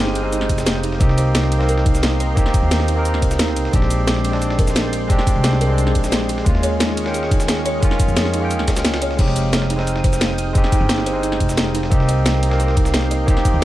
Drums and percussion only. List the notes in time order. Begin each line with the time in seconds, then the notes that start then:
0.07 snare
0.15 closed hi-hat, ride
0.32 closed hi-hat, cabasa
0.41 snare
0.49 kick, closed hi-hat, ride, cabasa
0.58 snare, cabasa
0.66 snare, closed hi-hat, cabasa
0.75 snare
0.83 closed hi-hat, ride, cabasa
0.92 snare
1.01 kick, closed hi-hat, cabasa
1.09 snare
1.18 closed hi-hat, ride, cabasa
1.35 snare, closed hi-hat, cabasa
1.44 snare
1.52 closed hi-hat, ride
1.61 snare
1.69 closed hi-hat, cabasa
1.78 snare
1.86 kick, closed hi-hat, ride, cabasa
1.95 snare, cabasa
2.03 snare, closed hi-hat, open hi-hat, cabasa
2.12 snare
2.20 closed hi-hat, ride, cabasa
2.37 kick, closed hi-hat, cabasa
2.46 snare
2.54 kick, closed hi-hat, ride, cabasa
2.71 snare, closed hi-hat, cabasa
2.80 snare
2.88 closed hi-hat, ride
3.05 closed hi-hat, cabasa
3.14 snare
3.22 kick, closed hi-hat, ride, cabasa
3.31 snare, cabasa
3.39 snare, closed hi-hat, cabasa
3.48 snare
3.56 closed hi-hat, ride, cabasa
3.65 snare
3.73 kick, closed hi-hat, cabasa
3.82 snare
3.90 closed hi-hat, ride, cabasa
4.07 snare, closed hi-hat, cabasa
4.16 snare
4.25 closed hi-hat, ride
4.33 snare
4.42 closed hi-hat, cabasa
4.50 snare
4.59 kick, closed hi-hat, ride, cabasa
4.67 snare, cabasa
4.76 snare, closed hi-hat, open hi-hat, cabasa
4.85 snare
4.93 closed hi-hat, ride, cabasa
5.10 kick, closed hi-hat, cabasa
5.19 snare
5.27 kick, closed hi-hat, ride, cabasa
5.44 snare, closed hi-hat, cabasa
5.53 snare
5.61 closed hi-hat, ride
5.78 closed hi-hat, cabasa
5.87 snare
5.95 kick, closed hi-hat, ride, cabasa
6.04 snare, cabasa
6.12 snare, closed hi-hat, cabasa
6.21 snare
6.29 closed hi-hat, ride, cabasa
6.38 snare
6.46 kick, closed hi-hat, cabasa
6.55 snare
6.63 closed hi-hat, ride, cabasa
6.80 snare, closed hi-hat, cabasa
6.89 snare
6.97 closed hi-hat, ride
7.06 snare
7.14 closed hi-hat, cabasa
7.23 snare
7.31 kick, closed hi-hat, ride, cabasa
7.40 snare, cabasa
7.48 snare, closed hi-hat, open hi-hat, cabasa
7.57 snare
7.65 closed hi-hat, ride, cabasa
7.83 kick, closed hi-hat, cabasa
7.91 snare
8.00 kick, closed hi-hat, ride, cabasa
8.08 cabasa
8.16 snare, closed hi-hat, cabasa
8.25 snare
8.34 closed hi-hat, ride
8.50 closed hi-hat, cabasa
8.59 snare
8.68 kick, snare, closed hi-hat, ride, cabasa
8.76 snare, closed hi-hat, cabasa
8.85 snare, closed hi-hat, cabasa
8.94 snare, closed hi-hat
9.02 closed hi-hat, ride, cabasa
9.11 snare
9.19 kick, closed hi-hat, crash, cabasa
9.28 snare
9.36 closed hi-hat, ride, cabasa
9.53 snare, closed hi-hat, cabasa
9.62 snare
9.70 closed hi-hat, ride
9.79 snare
9.87 closed hi-hat, cabasa
9.96 snare
10.04 kick, closed hi-hat, ride, cabasa
10.13 snare, cabasa
10.21 snare, closed hi-hat, open hi-hat, cabasa
10.30 snare
10.38 closed hi-hat, ride, cabasa
10.55 kick, closed hi-hat, cabasa
10.64 snare
10.72 kick, closed hi-hat, ride, cabasa
10.89 snare, closed hi-hat, cabasa
10.98 snare
11.06 closed hi-hat, ride
11.23 closed hi-hat, cabasa
11.32 snare
11.40 kick, closed hi-hat, ride, cabasa
11.49 snare, cabasa
11.57 snare, closed hi-hat, cabasa
11.66 snare
11.75 closed hi-hat, ride, cabasa
11.83 snare
11.92 kick, closed hi-hat, cabasa
12.00 snare
12.09 closed hi-hat, ride, cabasa
12.26 snare, closed hi-hat, cabasa
12.34 snare
12.43 closed hi-hat, ride
12.51 snare
12.60 closed hi-hat, cabasa
12.68 snare
12.77 kick, closed hi-hat, ride, cabasa
12.85 snare, cabasa
12.94 snare, closed hi-hat, open hi-hat, cabasa
13.03 snare
13.11 closed hi-hat, ride, cabasa
13.28 kick, closed hi-hat, cabasa
13.37 snare
13.45 kick, closed hi-hat, ride, cabasa